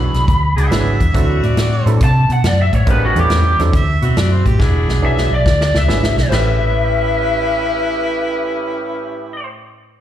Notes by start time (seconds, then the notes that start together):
Already playing: B1 F#3 B3 D4 E4 G#4 B5
0.14 B1, snare, closed hi-hat
0.28 D2, kick, closed hi-hat
0.56 C#2 D4 F#4 G#4 E5, closed hi-hat
0.71 G#1 F#3 B3 D4 E4 B4, snare, closed hi-hat
1.00 E2, kick, closed hi-hat
1.14 D2 F#3 C4 D4 E4 F#4 A4, kick, closed hi-hat
1.43 A2 D5, closed hi-hat
1.57 A2 D5, snare, closed hi-hat
1.86 A2 F#3 C4 D4 E4 A4, closed hi-hat
2.01 C3 A5, kick, closed hi-hat
2.29 B2 F#5, closed hi-hat
2.43 F#2 D5, snare, closed hi-hat
2.62 E5
2.73 A2 C#5, kick, closed hi-hat
2.87 A1 G#3 B3 C4 C#4 D4 F4 G4 A#4 B4, kick, closed hi-hat
3.05 F#4
3.16 E2 G3 B3 C#4 E4 G4 A4, closed hi-hat
3.30 E2, snare, closed hi-hat
3.59 E2 F#3 C4 D4 E4 A4, snare, closed hi-hat
3.73 D2 E5, kick, closed hi-hat
4.02 B2 C4 E4 F#4, closed hi-hat
4.17 F#2 D5, snare, closed hi-hat
4.34 C5
4.46 A2 G4, kick, closed hi-hat
4.59 E1 D4 E4 F#4 G#4, kick, snare
4.88 B1, snare
5.02 B1 F#3 B3 D4 E4 G#4 E5
5.18 snare
5.31 B1 D5
5.46 D2, kick, snare
5.61 D5, snare
5.74 C#2 E5, snare
5.88 G#1 F#3 B3 D4 E4 G#4, snare
6.04 snare
6.17 B1, snare
6.29 A1 A2 A3 C#4 G4 B4, snare, china
6.34 E4 E5